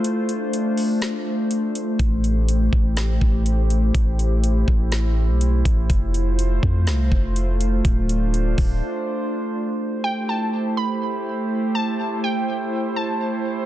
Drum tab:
HH |xxxox-xx|xxx-x-xx|xxx-x-xx|xxx-x-xx|
SD |----o---|----o---|----o---|----o---|
BD |--------|o--o-o--|o--o---o|o--o-o--|

HH |xxxo----|--------|--------|
SD |--------|--------|--------|
BD |o--o----|--------|--------|